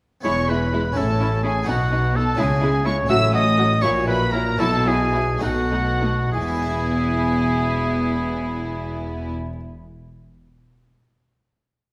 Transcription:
0.21 harpsichord B3 E4 G#4, oboe C#5
0.25 double bass section E1, cello section E2, harpsichord E2, viola section G#3, violin section E4 C#6
0.49 viola section G#3, violin section E4 B5, oboe B4
0.73 viola section G#3, violin section E4
0.92 double bass section A1, harpsichord C#4 E4 A4, viola section C#4, violin section E4
0.96 harpsichord A2, cello section A2, oboe A4, violin section A5
1.19 viola section C#4, violin section E4
1.43 viola section C#4, violin section E4 G#5, oboe G#4
1.62 harpsichord B3 D#4 F#4
1.67 double bass section B1, cello section B2, harpsichord B2, viola section B3, violin section D#4 F#5, oboe F#4
1.91 viola section B3, violin section D#4
2.14 viola section B3, violin section D#4 A5, oboe A4
2.34 cello section C#3, harpsichord G#3 C#4 E4, violin section E4
2.38 double bass section C#2, harpsichord C#3, viola section G#3, oboe G#4, violin section G#5
2.61 viola section G#3, violin section E4
2.84 viola section G#3, violin section E4 C#6, oboe C#5
3.06 double bass section A1, cello section A2, harpsichord A2 C#4 F#4, viola section F#3, violin section F#4 E6, oboe E5
3.32 viola section F#3, violin section F#4 D#6, oboe D#5
3.56 viola section F#3, violin section F#4
3.80 double bass section A#1, cello section A#2, harpsichord A#2 E4 F#4, viola section F#3, violin section E4 C#6, oboe C#5
4.06 viola section F#3, violin section E4 B5, oboe B4
4.32 viola section F#3, violin section E4 A#5, oboe A#4
4.57 double bass section B1, cello section B2, harpsichord B2 E4 F#4, viola section F#3, violin section E4 A5, oboe A4
4.86 viola section F#3, violin section E4 G#5, oboe G#4
5.13 viola section F#3, violin section E4
5.38 double bass section B1, harpsichord A3 D#4 F#4, violin section D#4
5.42 cello section B2, harpsichord B2, viola section A3, oboe F#4, violin section F#5
5.71 viola section A3, violin section D#4
6.00 viola section A3, violin section D#4
6.32 double bass section E1, cello section E2, harpsichord E3, viola section B3, violin section E4 G#5, oboe G#4
6.41 harpsichord B3
6.48 harpsichord E4
6.55 harpsichord G#4
6.62 harpsichord E5

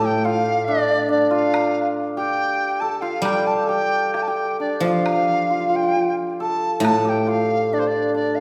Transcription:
Already playing: guzheng A2, hammered dulcimer D4 F4 A4
0.01 hammered dulcimer G4, dizi G5
0.17 hammered dulcimer G4
0.25 hammered dulcimer F4, dizi F5
0.65 hammered dulcimer D4, dizi D5
1.09 hammered dulcimer D4, dizi D5
1.31 hammered dulcimer F4, dizi F5
1.54 high woodblock
2.17 hammered dulcimer G4, dizi G5
2.80 hammered dulcimer A4, dizi A5
3.01 hammered dulcimer F4, dizi F5
3.22 guzheng G3, hammered dulcimer G4, dizi G5, high woodblock
3.47 dizi A5
3.64 hammered dulcimer A4
3.68 hammered dulcimer G4, dizi G5
4.14 hammered dulcimer G4, dizi G5, high woodblock, low woodblock
4.22 dizi A5
4.28 hammered dulcimer G4, dizi G5
4.60 hammered dulcimer D4, dizi D5
4.80 guzheng F3, hammered dulcimer F4
4.85 dizi F5
5.06 high woodblock
5.50 hammered dulcimer F4
5.60 hammered dulcimer F4
5.69 hammered dulcimer F4
5.75 hammered dulcimer F4, dizi G5
5.83 hammered dulcimer F4
5.91 hammered dulcimer F4
5.96 hammered dulcimer F4
6.40 hammered dulcimer A4, dizi A5
6.80 guzheng A2, hammered dulcimer A4
6.85 dizi A5, high woodblock
7.05 hammered dulcimer G4
7.09 dizi G5
7.27 hammered dulcimer F4, dizi F5
7.73 hammered dulcimer D4, dizi D5
7.79 dizi C5
7.87 dizi D5
8.14 hammered dulcimer D4, dizi D5
8.35 dizi F5

